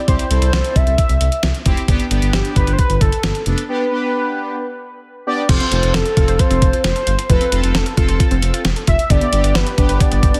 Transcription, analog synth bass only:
0.08 0.16 C2 loud
0.30 0.39 C2 loud
0.42 0.50 C2 loud
0.53 0.62 C2 loud
0.76 0.84 C2 loud
0.87 0.95 C2 medium
1.09 1.18 C2 medium
1.21 1.29 C2 loud
1.43 1.52 C2 loud
1.66 1.74 F1 medium
1.88 1.97 G1 loud
2.11 2.19 G1 loud
2.22 2.31 G1 medium
2.33 2.42 G1 loud
2.56 2.65 G1 loud
2.67 2.76 G1 loud
2.90 2.98 G1 loud
3.01 3.10 G1 loud
3.24 3.32 G1 loud
3.46 3.55 F1 loud
5.49 5.58 F1 loud
5.72 5.80 F1 loud
5.83 5.92 F1 loud
5.94 6.03 F1 loud
6.17 6.25 F1 loud
6.28 6.37 F1 loud
6.51 6.59 F1 loud
6.62 6.71 F1 loud
6.84 6.93 F1 loud
7.07 7.16 G1 medium
7.30 7.38 F1 loud
7.52 7.61 F1 loud
7.63 7.72 F1 medium
7.75 7.83 F1 loud
7.97 8.06 F1 loud
8.09 8.17 F1 loud
8.31 8.40 F1 loud
8.42 8.51 F1 loud
8.65 8.74 F1 loud
8.88 8.96 F1 loud
9.10 9.19 G1 loud
9.33 9.41 G1 loud
9.44 9.53 G1 loud
9.55 9.64 G1 loud
9.78 9.86 G1 medium
9.89 9.98 G1 medium
10.12 10.20 G1 loud
10.23 10.32 G1 loud

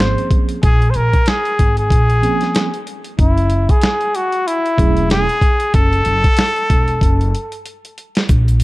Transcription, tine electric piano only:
0.00 0.57 F3 medium
0.00 0.57 A#3 medium
0.00 0.58 C4 soft
0.00 0.58 C#4 soft
0.00 0.62 G#4 medium
2.22 2.69 F3 medium
2.22 2.69 A#3 medium
2.22 2.69 C4 soft
2.22 2.70 C#4 medium
2.22 2.70 G#4 medium
4.77 5.24 F#3 medium
4.77 5.25 A3 medium
4.77 5.25 C#4 medium
4.77 5.25 E4 medium
4.77 5.25 G#4 medium

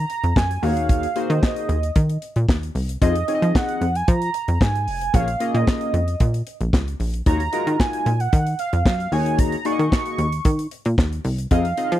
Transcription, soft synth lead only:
0.00 0.38 A#5 loud
0.36 0.64 G#5 loud
0.63 1.31 F5 loud
1.30 2.36 D#5 medium
3.02 3.57 D#5 loud
3.55 3.97 F#5 loud
3.96 4.10 G#5 loud
4.08 4.55 A#5 loud
4.55 4.63 A#5 medium
4.61 5.16 G#5 loud
5.15 5.55 F5 loud
5.56 6.57 D#5 medium
7.27 7.81 A#5 loud
7.80 8.22 G#5 loud
8.20 8.59 F#5 medium
8.59 8.84 F5 medium
8.86 9.14 F5 medium
9.13 9.40 G#5 loud
9.39 9.67 A#5 loud
9.66 9.92 C#6 loud
9.93 10.68 C#6 loud
11.52 12.00 F5 loud

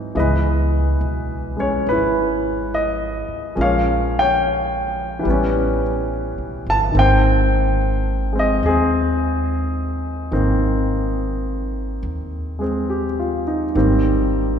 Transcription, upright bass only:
0.00 0.11 G#2 medium
0.15 0.97 C#2 medium
1.01 1.82 B1 medium
1.87 3.24 G#1 medium
3.28 muted upright bass stroke soft
3.57 5.22 A#1 medium
5.25 6.34 A1 medium
6.38 6.64 B1 soft
6.66 6.92 G1 medium
6.95 8.59 G#1 medium
8.63 10.28 D#2 medium
10.32 11.98 G#1 medium
12.03 13.71 D#2 medium
13.75 14.59 G#1 medium

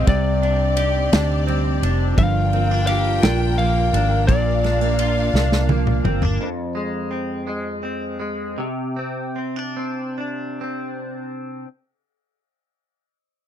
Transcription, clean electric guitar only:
0.00 0.15 G#3 medium
0.00 0.42 C4 medium
0.00 0.15 G#4 medium
0.07 2.18 C3 medium
0.43 1.12 D4 medium
0.77 2.88 G4 medium
1.13 1.83 D4 medium
1.47 2.25 C4 medium
1.83 2.53 D4 medium
2.18 4.28 G2 medium
2.53 2.71 C4 medium
2.71 3.23 D4 soft
2.89 4.36 G4 medium
3.24 3.93 D4 medium
3.59 5.69 A#3 medium
3.94 4.63 D4 medium
4.29 6.39 A#2 medium
4.64 5.34 D4 medium
5.00 8.50 F4 medium
5.35 6.04 D4 medium
5.70 6.47 A#3 medium
6.04 6.23 C4 medium
6.23 6.47 D4 soft
6.41 8.58 F2 medium
6.75 7.46 G#3 soft
7.11 7.83 C4 soft
7.47 8.18 G#3 soft
7.83 8.96 C4 soft
8.20 8.65 G#3 soft
8.58 11.65 C3 medium
8.96 9.36 C4 soft
9.36 9.56 C4 soft
9.56 10.17 D4 soft
9.77 10.61 C4 soft
10.18 11.65 D4 soft
10.61 11.65 C4 soft

